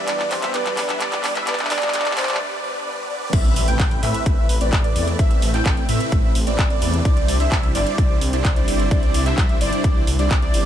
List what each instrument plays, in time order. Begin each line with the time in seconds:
Already playing: analog synth pad E2 E3 G4 B4, soft synth lead D5, riser
0.07 supersaw synth G3 B3 D4 B4 D5, analog synth lead D5, clap, closed hi-hat
0.19 clap
0.31 soft synth lead C5, clap, open hi-hat
0.42 supersaw synth G3 B3 D4 B4 E5, analog synth lead E5, clap, closed hi-hat
0.54 supersaw synth G3 B3 D4 B4 D5, soft synth lead B4, analog synth lead D5, clap, closed hi-hat
0.66 clap, closed hi-hat
0.77 soft synth lead B4, clap, open hi-hat
0.89 supersaw synth G3 B3 D4 B4 E5, analog synth lead E5, clap, closed hi-hat
1.00 supersaw synth G3 B3 D4 B4 D5, analog synth lead D5, clap, closed hi-hat
1.12 clap, closed hi-hat
1.24 clap, open hi-hat
1.35 supersaw synth G3 B3 D4 B4 E5, analog synth lead E5, clap, closed hi-hat
1.47 supersaw synth G3 B3 D4 B4 D5, soft synth lead B4, analog synth lead D5, clap, closed hi-hat
1.53 clap
1.59 clap, closed hi-hat
1.63 soft synth lead E5, clap
1.70 supersaw synth G3 B3 D4 B4 D5, analog synth lead D5, soft synth lead D5, clap, open hi-hat
1.76 clap
1.82 clap, closed hi-hat
1.88 clap
1.93 supersaw synth G3 B3 D4 B4 D5, analog synth lead D5, clap, closed hi-hat
1.99 clap
2.05 clap, closed hi-hat
2.11 clap
2.17 supersaw synth G3 B3 D4 B4 D5, soft synth lead C5, analog synth lead D5, clap, open hi-hat
2.23 clap
2.28 clap, closed hi-hat
2.34 clap
2.40 supersaw synth G3 B3 D4 B4 D5
2.63 supersaw synth G3 B3 D4 B4 D5
2.86 supersaw synth G3 B3 D4 B4 D5
3.10 supersaw synth G3 B3 D4 B4 D5
3.33 detuned saw bass A1, analog synth pad C3 A3 B4, supersaw synth A3 C4 E4 B4 E5, analog synth lead E5, kick, closed hi-hat, crash, impact
3.45 closed hi-hat
3.56 detuned saw bass A1, open hi-hat
3.68 supersaw synth A3 C4 E4 B4 G5, analog synth lead G5, closed hi-hat
3.80 detuned saw bass A1, kick, clap, closed hi-hat
3.91 detuned saw bass A1, closed hi-hat
4.03 detuned saw bass A2, supersaw synth A3 C4 E4 B4 E5, analog synth lead E5, clap, open hi-hat
4.14 closed hi-hat
4.26 detuned saw bass A1, kick, closed hi-hat
4.49 detuned saw bass A1, open hi-hat
4.61 detuned saw bass A1, supersaw synth A3 C4 E4 B4 D5, analog synth lead D5, closed hi-hat
4.73 detuned saw bass A1, kick, clap, closed hi-hat
4.84 supersaw synth A3 C4 E4 B4 D5, analog synth lead D5, closed hi-hat
4.96 detuned saw bass E2, open hi-hat
5.08 closed hi-hat
5.19 detuned saw bass A1, supersaw synth A3 C4 E4 B4 E5, analog synth pad C4, analog synth lead E5, kick, closed hi-hat
5.31 closed hi-hat
5.42 detuned saw bass A1, open hi-hat
5.54 supersaw synth A3 C4 E4 B4 G5, analog synth lead G5, clap, closed hi-hat
5.66 detuned saw bass A1, kick, clap, closed hi-hat
5.77 detuned saw bass A1, closed hi-hat
5.89 detuned saw bass A2, supersaw synth A3 C4 E4 B4 E5, analog synth lead E5, open hi-hat
6.00 closed hi-hat
6.12 detuned saw bass A1, kick, closed hi-hat
6.35 detuned saw bass A1, open hi-hat
6.47 detuned saw bass A1, supersaw synth A3 C4 E4 B4 D5, analog synth lead D5, closed hi-hat
6.59 detuned saw bass A1, kick, clap, closed hi-hat
6.70 supersaw synth A3 C4 E4 B4 D5, analog synth lead D5, closed hi-hat
6.82 detuned saw bass E2, open hi-hat
6.94 closed hi-hat
7.05 detuned saw bass C2, supersaw synth G3 D4 E4 C5 D5, analog synth pad D4 E4, analog synth lead D5, kick, closed hi-hat
7.17 closed hi-hat
7.28 detuned saw bass C2, open hi-hat
7.40 supersaw synth G3 D4 E4 C5 E5, analog synth lead E5, closed hi-hat
7.52 detuned saw bass C2, kick, clap, closed hi-hat
7.63 detuned saw bass C2, closed hi-hat
7.75 detuned saw bass G1, supersaw synth G3 D4 E4 C5 D5, analog synth lead D5, clap, open hi-hat
7.87 closed hi-hat
7.98 detuned saw bass C2, kick, closed hi-hat
8.21 detuned saw bass C2, open hi-hat
8.33 detuned saw bass C2, supersaw synth G3 D4 E4 C5 D5, analog synth lead D5, closed hi-hat
8.45 detuned saw bass C2, kick, clap, closed hi-hat
8.56 supersaw synth G3 D4 E4 C5 D5, analog synth lead D5, closed hi-hat
8.68 detuned saw bass G1, open hi-hat
8.80 closed hi-hat
8.91 detuned saw bass C2, supersaw synth G3 D4 E4 C5 D5, analog synth lead D5, kick, closed hi-hat
9.03 closed hi-hat
9.14 detuned saw bass C2, open hi-hat
9.26 supersaw synth G3 D4 E4 C5 E5, analog synth lead E5, clap, closed hi-hat
9.38 detuned saw bass C2, kick, clap, closed hi-hat
9.49 detuned saw bass C2, closed hi-hat
9.61 detuned saw bass G1, supersaw synth G3 D4 E4 C5 D5, analog synth lead D5, open hi-hat
9.73 closed hi-hat
9.84 detuned saw bass C2, kick, closed hi-hat
10.07 detuned saw bass C2, open hi-hat
10.19 detuned saw bass C2, supersaw synth G3 D4 E4 C5 D5, analog synth lead D5, closed hi-hat
10.31 detuned saw bass C2, kick, clap, closed hi-hat
10.42 supersaw synth G3 D4 E4 C5 D5, analog synth lead D5, closed hi-hat
10.54 detuned saw bass G1, open hi-hat